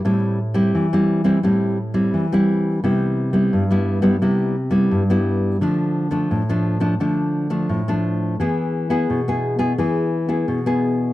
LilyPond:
\new Staff \with { instrumentName = "Nylon-string guitar" } { \time 4/4 \key a \minor \tempo 4 = 86 << { <g c' e'>8 r16 <g c' e'>8 <g c' e'>8 <g c' e'>16 <g c' e'>8 r16 <g c' e'>8 <g c' e'>8. | <g b e'>8. <g b e'>8 <g b e'>8 <g b e'>16 <g b e'>8 r16 <g b e'>8 <g b e'>8. | <f a d'>8. <f a d'>8 <f a d'>8 <f a d'>16 <f a d'>8. <f a d'>8 <f a d'>8. | <b e' gis'>8. <b e' gis'>8 <b e' gis'>8 <b e' gis'>16 <b e' gis'>8. <b e' gis'>8 <b e' gis'>8. | } \\ { a,4 e4 a,4 e4 | c4 g,4 c4 g,4 | d4 a,4 d4 a,4 | e4 b,4 e4 b,4 | } >> }